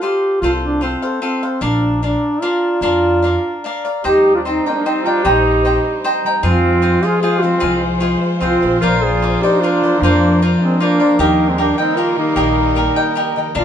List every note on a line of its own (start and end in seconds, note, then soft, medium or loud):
0.02 0.43 F4 soft
0.02 0.41 G4 medium
0.02 0.43 A4 medium
0.02 0.43 C5 medium
0.02 0.44 F5 medium
0.41 0.94 C2 medium
0.41 0.51 F4 loud
0.41 0.80 F4 medium
0.41 0.81 A4 medium
0.41 0.82 C5 medium
0.41 0.83 F5 medium
0.63 0.85 D4 medium
0.81 1.22 C4 medium
0.81 1.02 F4 soft
0.81 1.02 A4 medium
0.81 1.02 C5 medium
0.81 1.01 F5 medium
1.02 1.21 A4 soft
1.02 1.21 C5 soft
1.02 1.22 F5 medium
1.22 1.65 C4 medium
1.22 1.43 F4 medium
1.22 1.43 A4 medium
1.22 1.42 C5 medium
1.22 1.42 F5 medium
1.43 1.61 A4 soft
1.43 1.61 C5 soft
1.43 1.61 F5 medium
1.61 2.13 A#1 medium
1.61 2.01 D4 medium
1.61 2.03 D4 medium
1.61 2.02 A#4 medium
1.61 2.02 D5 medium
1.61 2.02 F5 medium
2.02 2.41 D4 soft
2.02 2.43 D4 medium
2.02 2.42 A#4 medium
2.02 2.42 D5 medium
2.02 2.41 F5 soft
2.42 2.81 D4 medium
2.42 2.82 F4 medium
2.42 2.83 A#4 medium
2.42 2.82 D5 medium
2.42 2.82 F5 medium
2.81 3.34 F2 medium
2.81 3.21 D4 medium
2.81 3.59 F4 loud
2.81 3.23 A#4 medium
2.81 3.23 D5 medium
2.81 3.23 F5 medium
3.22 3.63 D4 medium
3.22 3.65 A#4 medium
3.22 3.64 D5 medium
3.22 3.64 F5 medium
3.64 3.85 D4 medium
3.64 3.85 A#4 medium
3.64 3.83 D5 medium
3.64 3.84 F5 medium
3.85 4.04 A#4 soft
3.85 4.04 D5 medium
3.85 4.04 F5 soft
4.03 4.57 D#2 medium
4.03 6.41 G3 medium
4.03 5.05 G3 medium
4.03 6.41 D#4 soft
4.03 4.34 D#4 medium
4.03 4.33 G4 loud
4.03 6.41 C5 medium
4.03 4.45 C5 medium
4.03 4.44 D#5 medium
4.03 4.45 G5 medium
4.03 4.45 A#5 medium
4.35 4.40 D4 medium
4.35 4.39 F4 medium
4.44 4.69 C4 medium
4.44 5.65 C4 medium
4.44 4.66 D#4 medium
4.44 4.66 C5 medium
4.44 4.66 D#5 soft
4.44 4.66 G5 soft
4.44 4.65 A#5 medium
4.65 4.72 A#3 medium
4.65 4.72 D4 medium
4.65 5.84 D#4 medium
4.65 4.85 D#5 soft
4.65 4.85 G5 soft
4.65 4.85 A#5 soft
4.70 4.79 G#3 soft
4.70 4.77 C4 medium
4.75 4.88 A#3 medium
4.75 4.86 D4 medium
4.85 5.08 C4 medium
4.85 5.07 D#4 medium
4.85 6.04 G4 medium
4.85 5.06 C5 medium
4.85 5.06 D#5 medium
4.85 5.05 G5 medium
4.85 5.04 A#5 medium
5.05 5.24 G3 medium
5.05 5.29 D4 medium
5.05 5.25 F4 medium
5.05 5.23 D#5 soft
5.05 5.24 G5 soft
5.05 5.25 A#5 soft
5.23 5.77 A#1 medium
5.23 6.23 G3 medium
5.23 6.04 G4 medium
5.23 5.64 C5 medium
5.23 5.64 D#5 medium
5.23 5.65 G5 medium
5.23 5.65 A#5 medium
5.28 6.06 D#4 medium
5.65 6.82 C4 medium
5.65 6.04 C5 soft
5.65 6.03 D#5 medium
5.65 6.04 G5 soft
5.65 6.04 A#5 medium
5.84 8.55 D#4 medium
6.04 8.40 G4 medium
6.04 6.25 C5 medium
6.04 6.25 D#5 medium
6.04 6.25 G5 medium
6.04 6.25 A#5 medium
6.24 6.49 G3 medium
6.24 6.43 D#5 soft
6.24 6.43 G5 medium
6.24 6.43 A#5 medium
6.42 6.95 F2 medium
6.42 7.42 F3 medium
6.42 8.80 G#3 medium
6.42 7.05 C4 medium
6.42 8.80 F4 medium
6.42 6.82 F4 medium
6.42 7.05 F4 medium
6.42 6.81 G#4 medium
6.42 11.14 C5 medium
6.42 6.82 C5 medium
6.42 6.83 F5 medium
6.82 8.00 C4 medium
6.82 7.03 F4 medium
6.82 7.03 G#4 soft
6.82 7.03 C5 medium
6.82 7.01 F5 medium
7.03 7.21 F4 medium
7.03 8.21 F4 medium
7.03 7.22 G#4 loud
7.03 7.22 G#4 soft
7.03 7.23 C5 soft
7.03 7.22 F5 medium
7.22 7.44 F4 medium
7.22 7.43 F4 medium
7.22 7.43 G#4 loud
7.22 7.43 G#4 medium
7.22 7.43 C5 medium
7.22 8.40 F5 medium
7.22 7.41 F5 medium
7.41 7.61 F3 medium
7.41 7.83 C4 medium
7.41 7.82 F4 medium
7.41 7.59 G#4 soft
7.41 7.60 C5 soft
7.41 7.60 F5 soft
7.60 8.14 C2 medium
7.60 8.60 F3 medium
7.60 8.00 F4 medium
7.60 8.00 G#4 medium
7.60 8.01 C5 medium
7.60 8.01 F5 medium
8.00 9.20 C4 medium
8.00 8.40 F4 medium
8.00 8.40 G#4 medium
8.00 8.42 C5 medium
8.00 8.42 F5 medium
8.21 9.59 F4 medium
8.39 8.61 C2 medium
8.39 8.78 C4 medium
8.39 8.62 F4 medium
8.39 8.79 F4 loud
8.39 8.63 G#4 medium
8.39 8.62 C5 medium
8.39 10.06 F5 medium
8.39 8.61 F5 medium
8.62 8.80 A#1 medium
8.62 8.82 G#4 soft
8.62 8.81 C5 soft
8.62 8.82 F5 soft
8.80 9.34 A#1 medium
8.80 9.80 F3 medium
8.80 11.16 A#3 medium
8.80 11.16 D4 medium
8.80 9.02 F4 medium
8.80 9.21 F4 medium
8.80 9.05 A#4 loud
8.80 9.22 A#4 medium
8.80 9.22 C5 medium
8.80 9.22 D5 medium
9.02 9.44 F4 medium
9.02 9.43 G#4 medium
9.20 10.38 C4 medium
9.20 9.43 F4 soft
9.20 9.43 A#4 soft
9.20 9.43 C5 soft
9.20 9.42 D5 medium
9.40 10.59 D4 medium
9.40 9.62 D#4 medium
9.40 9.63 G4 medium
9.40 9.63 C5 medium
9.40 9.62 D5 medium
9.44 9.62 A#4 soft
9.59 10.02 D4 medium
9.59 10.78 F4 medium
9.59 10.03 F4 medium
9.59 9.83 F4 medium
9.64 9.83 A#4 medium
9.64 9.83 C5 medium
9.64 9.82 D5 medium
9.81 9.98 F3 medium
9.81 10.03 A#4 soft
9.81 10.03 C5 soft
9.81 10.02 D5 soft
9.99 10.52 F2 medium
9.99 10.98 F3 medium
9.99 10.40 A#3 medium
9.99 10.41 D4 medium
10.03 10.41 F4 medium
10.03 10.42 A#4 medium
10.03 10.42 C5 medium
10.03 10.42 D5 medium
10.38 13.38 C4 medium
10.38 10.79 F4 medium
10.38 10.81 A#4 medium
10.43 10.81 C5 medium
10.43 10.81 D5 medium
10.60 10.78 G#3 medium
10.60 10.79 C4 medium
10.60 11.24 D4 medium
10.79 11.20 A#3 medium
10.79 11.20 D4 medium
10.79 13.31 F4 medium
10.79 11.00 F4 medium
10.79 11.00 A#4 medium
10.79 10.99 C5 medium
10.79 10.99 D5 medium
10.99 11.24 F3 medium
10.99 11.19 A#4 soft
10.99 11.19 C5 soft
10.99 11.18 D5 medium
11.18 11.70 D#2 medium
11.18 12.15 D#3 medium
11.18 13.53 G3 medium
11.18 11.51 A#3 medium
11.18 13.53 D#4 medium
11.18 11.52 D#4 loud
11.18 11.57 G4 medium
11.18 13.53 A#4 medium
11.18 11.58 A#4 medium
11.18 11.58 D#5 medium
11.18 11.58 G5 medium
11.50 11.61 G#3 medium
11.50 11.61 C4 medium
11.57 12.75 A#3 medium
11.57 11.79 A#3 medium
11.57 11.78 D4 medium
11.57 11.78 G4 medium
11.57 11.78 A#4 medium
11.57 11.78 D#5 medium
11.57 11.77 G5 medium
11.77 11.99 C4 medium
11.77 12.95 D#4 medium
11.77 11.99 D#4 medium
11.77 11.97 A#4 soft
11.77 11.97 D#5 medium
11.77 11.97 G5 medium
11.96 12.18 A#3 medium
11.96 12.18 F4 medium
11.96 12.35 G4 medium
11.96 12.36 A#4 medium
11.96 13.15 D#5 medium
11.96 12.36 D#5 medium
11.96 12.36 G5 medium
12.16 12.35 D#3 medium
12.16 13.12 A#3 medium
12.16 13.12 D#4 medium
12.36 12.87 A#1 medium
12.36 13.35 D#3 medium
12.36 12.74 G4 medium
12.36 12.76 A#4 medium
12.36 12.76 D#5 medium
12.36 12.76 G5 medium
12.75 13.64 A#3 medium
12.75 12.96 G4 medium
12.75 12.96 A#4 medium
12.75 12.96 D#5 soft
12.75 12.95 G5 medium
12.95 13.62 D#4 medium
12.95 13.15 A#4 medium
12.95 13.15 D#5 soft
12.95 13.15 G5 medium
13.15 13.36 G4 medium
13.15 13.36 A#4 medium
13.15 13.62 D#5 medium
13.15 13.36 D#5 medium
13.15 13.35 G5 medium
13.36 13.60 D#3 medium
13.36 13.53 A#4 soft
13.36 13.55 D#5 soft
13.36 13.55 G5 soft
13.55 13.64 A#1 medium
13.55 13.64 D3 medium
13.55 13.64 A#3 medium
13.55 13.64 D4 medium
13.55 13.64 F4 medium
13.55 13.64 A#4 medium
13.55 13.64 D5 medium
13.55 13.64 F5 medium
13.59 13.64 F4 medium